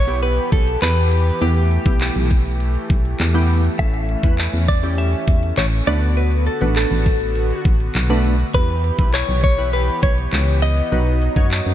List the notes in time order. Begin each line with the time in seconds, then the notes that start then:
Already playing: B1 E3 B3 G4 C#5
0.07 B3 E4 G4, closed hi-hat
0.23 B4, closed hi-hat
0.38 closed hi-hat
0.52 B1 A4, kick, closed hi-hat
0.68 closed hi-hat
0.82 E2 B4, clap, closed hi-hat
0.97 closed hi-hat
1.12 closed hi-hat
1.27 closed hi-hat
1.41 E2 A3 B3 E4 G4, closed hi-hat
1.56 closed hi-hat
1.71 closed hi-hat
1.86 B1 B3 E4 G4, kick, closed hi-hat
2.01 clap, closed hi-hat
2.15 B1, closed hi-hat
2.30 kick, closed hi-hat
2.46 closed hi-hat
2.60 closed hi-hat
2.75 closed hi-hat
2.90 B1, kick, closed hi-hat
3.05 closed hi-hat
3.20 E2, clap, closed hi-hat
3.34 B3 E4 G4, closed hi-hat
3.49 open hi-hat
3.65 closed hi-hat
3.79 A1 C#4 E4 A4 E5, kick, closed hi-hat
3.94 closed hi-hat
4.09 closed hi-hat
4.23 E2 C#4 E4 B4, kick, closed hi-hat
4.38 clap, closed hi-hat
4.53 E2, closed hi-hat
4.68 D5, kick, closed hi-hat
4.83 C#4 E4 G4, closed hi-hat
4.98 E5, closed hi-hat
5.13 closed hi-hat
5.28 E2, kick, closed hi-hat
5.43 closed hi-hat
5.57 A1 C#5, clap, closed hi-hat
5.72 closed hi-hat
5.87 D2 D3 A3 B3 D4 F#4 B4 D5, closed hi-hat
6.02 closed hi-hat
6.17 B4, closed hi-hat
6.32 closed hi-hat
6.46 A4, closed hi-hat
6.61 A1 A3 B3 D4 F#4 B4, closed hi-hat
6.76 A4, clap, closed hi-hat
6.91 A1, closed hi-hat
7.05 kick, closed hi-hat
7.21 closed hi-hat
7.35 closed hi-hat
7.50 closed hi-hat
7.65 A1, kick, closed hi-hat
7.80 closed hi-hat
7.95 B1, clap, closed hi-hat
8.10 A3 B3 D4 F#4 B4, closed hi-hat
8.25 closed hi-hat
8.40 closed hi-hat
8.54 E2 E3 B3 E4 G4 B4, kick, closed hi-hat
8.69 closed hi-hat
8.84 closed hi-hat
8.99 B1 E4 G4 B4, kick, closed hi-hat
9.14 C#5, clap, closed hi-hat
9.28 B1, closed hi-hat
9.43 C#5, kick, closed hi-hat
9.58 E4 G4 B4, closed hi-hat
9.73 B4, closed hi-hat
9.88 closed hi-hat
10.03 B1 C#5, kick, closed hi-hat
10.18 closed hi-hat
10.33 C#2, clap, closed hi-hat
10.47 closed hi-hat
10.62 D#5, closed hi-hat
10.78 closed hi-hat
10.92 B1 F#3 D#4 F#4 B4, closed hi-hat
11.07 closed hi-hat
11.22 closed hi-hat
11.36 F#2 D#4 F#4 C#5, kick, closed hi-hat
11.51 clap, closed hi-hat
11.66 F#2, closed hi-hat